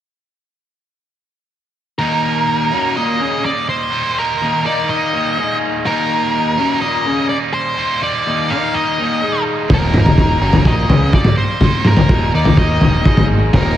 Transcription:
1.98 overdriven electric guitar D#2 D#3, distorted electric guitar D#2 A#2 D#3 G3 A#3 D#4, lead electric guitar A#4
2.71 distorted electric guitar D#2 A#2 D#3 G3 A#3 D#4, overdriven electric guitar F#2 F#3
2.96 overdriven electric guitar A#2 A#3, lead electric guitar D#5
3.20 overdriven electric guitar C#3 C#4
3.45 lead electric guitar D5
3.69 lead electric guitar C5
3.90 distorted electric guitar D#2 A#2 D#3 G3 A#3 D#4
4.19 lead electric guitar A#4
4.42 overdriven electric guitar D#2 D#3
4.63 distorted electric guitar D#2 A#2 D#3 G3 A#3 D#4, overdriven electric guitar D#3 D#4, lead electric guitar D5
4.90 lead electric guitar D#5
5.13 overdriven electric guitar D#2 D#3
5.37 overdriven electric guitar G#2 G#3
5.85 distorted electric guitar D#2 A#2 D#3 G3 A#3 D#4, overdriven electric guitar D#2 D#3, lead electric guitar A#4
6.57 distorted electric guitar D#2 A#2 D#3 G3 A#3 D#4, overdriven electric guitar F#2 F#3
6.81 overdriven electric guitar A#2 A#3, lead electric guitar D#5
7.06 overdriven electric guitar C#3 C#4
7.29 lead electric guitar D5
7.54 lead electric guitar C5
7.77 distorted electric guitar D#2 A#2 D#3 G3 A#3 D#4
8.03 lead electric guitar D5
8.27 overdriven electric guitar D#2 D#3
8.48 distorted electric guitar D#2 A#2 D#3 G3 A#3 D#4, overdriven electric guitar D#3 D#4, lead electric guitar F5
8.74 lead electric guitar D#5
8.98 overdriven electric guitar D#2 D#3
9.21 overdriven electric guitar G#2 G#3
9.68 fingered electric bass D#1, distorted electric guitar D#2 A#2 D#3 G3 A#3 D#4, overdriven electric guitar D#2 D#3, kick, floor tom
9.74 lead electric guitar A#4
9.94 mid tom
10.06 floor tom
10.18 kick
10.41 fingered electric bass F#1, distorted electric guitar D#2 A#2 D#3 G3 A#3 D#4, overdriven electric guitar F#2 F#3
10.53 floor tom
10.65 fingered electric bass A#1, overdriven electric guitar A#2 A#3, lead electric guitar D#5, kick
10.89 fingered electric bass C#2, overdriven electric guitar C#3 C#4, floor tom
11.13 lead electric guitar D5, kick
11.24 floor tom, mid tom
11.38 lead electric guitar C5
11.61 distorted electric guitar D#2 A#2 D#3 G3 A#3 D#4, kick, floor tom
11.85 lead electric guitar A#4, mid tom
11.97 floor tom
12.09 fingered electric bass D#1, overdriven electric guitar D#2 D#3, kick
12.33 fingered electric bass D#2, distorted electric guitar A#2 D#3 G3 A#3 D#4, overdriven electric guitar D#3 D#4, lead electric guitar D5
12.37 distorted electric guitar D#2
12.45 floor tom
12.57 lead electric guitar D#5, kick
12.81 fingered electric bass D#1, overdriven electric guitar D#2 D#3, floor tom
13.05 fingered electric bass G#1, overdriven electric guitar G#2 G#3, kick
13.17 floor tom, mid tom
13.53 fingered electric bass D#1, overdriven electric guitar D#2 D#3, distorted electric guitar D#2 A#2 D#3 G3 A#3 D#4, lead electric guitar A#4, kick, floor tom

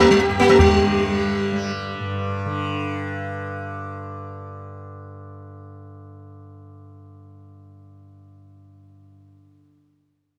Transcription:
Already playing: tanpura G2 D3 G3
0.00 sitar A3, tabla ge
0.11 sitar G3
0.21 sitar G4, tabla te
0.28 tanpura G2, sitar G4, tabla te
0.40 sitar A#3, tabla ke
0.49 sitar A3, tabla te
0.59 tanpura D3, sitar G3, tabla na, tabla ge
1.05 tanpura G3
1.52 tanpura G3
2.00 tanpura G2
2.46 tanpura D3

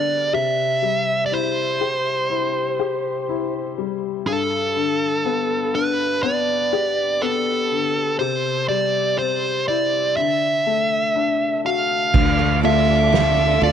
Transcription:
Already playing: upright piano G2 D3 G3 D4, lead electric guitar D5
0.33 upright piano C3, lead electric guitar E5
0.82 upright piano G3
1.26 lead electric guitar D5
1.32 upright piano E4, lead electric guitar C5
1.81 upright piano G4
2.30 upright piano E4
2.79 upright piano G4
3.29 upright piano E4
3.78 upright piano G3
4.27 upright piano G2, lead electric guitar A4
4.76 upright piano D3
5.25 upright piano B3
5.75 upright piano D4, lead electric guitar B4
6.23 upright piano B3, lead electric guitar D5
6.73 upright piano G4
7.22 upright piano B3, lead electric guitar A4
7.72 upright piano D3
8.19 upright piano C3, lead electric guitar C5
8.68 upright piano G3, lead electric guitar D5
9.19 upright piano C4, lead electric guitar C5
9.68 upright piano E4, lead electric guitar D5
10.17 upright piano D3, lead electric guitar E5
10.67 upright piano A3
11.16 upright piano D4
11.65 upright piano F#4, lead electric guitar F5
12.14 fretless electric bass D2, steel-string acoustic guitar D3, upright piano D3, string section F4 A4 D5 D6, kick, crash
12.39 steel-string acoustic guitar A3
12.63 upright piano A3, steel-string acoustic guitar F4, lead electric guitar E5, ride
12.88 steel-string acoustic guitar D4
13.12 steel-string acoustic guitar A3, upright piano F4, snare, ride
13.37 steel-string acoustic guitar D4
13.61 fretless electric bass D2, steel-string acoustic guitar F4, lead electric guitar D5, ride

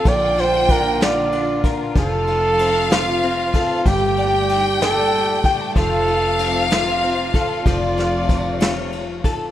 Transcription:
Already playing: clean electric guitar F3 C4 F4 A4, string section F4
0.05 fingered electric bass A#1, clean electric guitar A#2, string section D3 A#3, flugelhorn D5, violin section G5, kick, ride
0.37 clean electric guitar F4, flugelhorn C5, snare, ride
0.68 clean electric guitar D4, flugelhorn A#4, kick, ride
1.01 clean electric guitar F4, flugelhorn D5, snare, ride
1.32 clean electric guitar D4, ride
1.64 clean electric guitar A#4, kick, ride
1.95 fingered electric bass F1, string section C3 A3, clean electric guitar F3, flugelhorn A4, violin section F5, kick, ride
2.27 clean electric guitar F4, ride
2.59 clean electric guitar C4, ride
2.90 clean electric guitar F4, flugelhorn F4, snare, ride
3.22 clean electric guitar C4, ride
3.54 clean electric guitar A4, kick, ride
3.86 fingered electric bass G1, string section A#2 A3 G4, clean electric guitar G3, flugelhorn G4, violin section G5, kick, ride
4.17 clean electric guitar D5, ride
4.49 ride
4.80 flugelhorn A4, clean electric guitar D5, snare, ride
5.13 ride
5.44 clean electric guitar G5, kick, ride
5.60 clean electric guitar A5
5.76 fingered electric bass F1, string section C3 F4, clean electric guitar F3, flugelhorn A4, violin section F5, kick, ride
6.08 clean electric guitar F4, ride
6.39 clean electric guitar C4, ride
6.70 clean electric guitar F4, flugelhorn F4, snare, ride
7.03 clean electric guitar C4, ride
7.34 clean electric guitar A4, kick, ride
7.66 fingered electric bass F1, string section C3 A3, clean electric guitar F3, flugelhorn F4, violin section D5, kick, ride
7.97 clean electric guitar F4, snare, ride
8.29 kick, ride
8.60 clean electric guitar F4, violin section C#5, snare, ride
8.92 ride
9.24 clean electric guitar A4, kick, ride

